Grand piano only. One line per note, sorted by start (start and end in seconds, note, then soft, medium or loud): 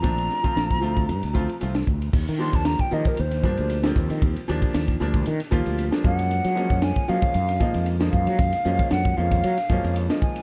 0.02 0.36 F3 medium
0.02 0.36 A3 medium
0.02 0.36 C4 medium
0.02 0.37 D4 medium
0.43 0.75 F3 medium
0.43 0.76 A3 medium
0.43 0.76 C4 medium
0.43 0.76 F4 medium
0.81 1.04 F3 medium
0.81 1.04 A3 medium
0.81 1.04 C4 medium
0.81 1.04 F4 medium
1.07 1.15 C4 soft
1.07 1.15 D4 soft
1.34 1.46 F3 medium
1.34 1.46 A3 medium
1.34 1.46 C4 medium
1.34 1.46 F4 loud
1.48 1.54 C4 soft
1.48 1.55 F4 soft
1.60 1.72 F3 medium
1.60 1.72 A3 medium
1.60 1.73 C4 medium
1.60 1.73 F4 medium
1.75 1.81 C4 soft
1.75 1.82 D4 soft
1.87 1.93 C4 soft
1.87 1.94 F4 soft
2.39 2.83 F3 medium
2.39 2.83 G3 medium
2.39 2.83 A#3 medium
2.39 2.83 D4 medium
2.91 3.13 F3 medium
2.91 3.13 G3 medium
2.91 3.14 A#3 medium
2.91 3.14 D#4 medium
3.17 3.24 A#3 soft
3.17 3.25 D#4 soft
3.44 3.76 F3 medium
3.44 3.76 G3 medium
3.44 3.77 A#3 medium
3.44 3.77 D4 medium
3.83 4.37 F3 medium
3.83 4.37 G3 medium
3.83 4.38 A#3 medium
3.83 4.38 C4 medium
4.48 4.92 F3 loud
4.48 4.92 G3 medium
4.48 4.92 A#3 medium
4.48 4.92 D4 loud
5.00 5.22 F3 medium
5.00 5.22 G3 medium
5.00 5.23 A#3 medium
5.00 5.23 D4 loud
5.26 5.33 A#3 soft
5.26 5.34 D4 soft
5.51 5.84 F3 loud
5.51 5.85 G3 loud
5.51 5.85 A#3 medium
5.51 5.85 F4 loud
5.91 6.02 F3 medium
5.91 6.04 G3 medium
5.91 6.03 A#3 medium
5.91 6.05 D4 medium
6.03 6.48 F3 medium
6.03 6.48 G#3 medium
6.03 6.48 A#3 medium
6.03 6.49 C#4 medium
6.55 7.00 F3 medium
6.55 7.00 G#3 medium
6.55 7.00 A#3 medium
6.55 7.01 C#4 loud
7.08 7.30 F3 medium
7.08 7.31 G#3 medium
7.08 7.31 A#3 medium
7.08 7.31 C#4 medium
7.34 7.41 A#3 soft
7.34 7.42 D#4 soft
7.60 7.93 F3 medium
7.60 7.93 G#3 medium
7.60 7.94 A#3 medium
7.60 7.94 D#4 loud
8.00 8.54 F3 medium
8.00 8.54 G#3 medium
8.00 8.55 A#3 medium
8.00 8.55 D#4 medium
8.65 9.09 F3 medium
8.65 9.09 G#3 medium
8.65 9.09 A#3 medium
8.65 9.10 C#4 medium
9.17 9.39 F3 medium
9.17 9.40 G#3 medium
9.17 9.40 A#3 medium
9.17 9.40 C#4 medium
9.43 9.50 A#3 soft
9.43 9.51 D#4 soft
9.69 10.02 F3 medium
9.69 10.03 G#3 medium
9.69 10.03 A#3 medium
9.69 10.03 C#4 medium
10.09 10.42 F3 medium
10.09 10.42 G#3 medium
10.09 10.42 A#3 medium
10.09 10.42 D#4 medium